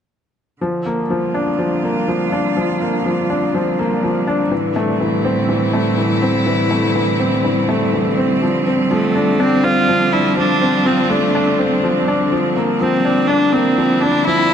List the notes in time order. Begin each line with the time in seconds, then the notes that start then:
0.61 D3 F3
0.86 A#3
0.96 G3
1.10 F3
1.15 F4
1.27 C4
1.34 D4
1.59 F3
1.83 A#3
2.08 F3
2.32 D4
2.57 F3
2.81 A#3
3.06 F3
3.30 D4
3.54 F3
3.79 A#3
4.03 F3
4.27 D4
4.51 A2 E3
4.76 A3
4.98 E3 E4
5.25 C4
5.49 E3
5.73 A3
5.98 E3
6.22 C4
6.46 E3
6.71 A3
6.95 E3
7.20 C4
7.44 E3
7.69 A3
7.93 E3
8.17 C4
8.42 F3
8.67 C4
8.91 F3 A3
9.16 D4
9.40 C4 D4
9.64 C4 F4
9.88 F3
10.12 D4 E4
10.37 F3 D4
10.62 C4
10.86 F3 C4
11.11 A3 D4
11.35 D4
11.59 C4
11.83 F3
12.08 D4
12.32 F3
12.56 A#3
12.81 F3 C4
13.05 D4
13.26 D4 E4
13.52 A#3 C4
13.78 F3
14.01 D4
14.26 F3 E4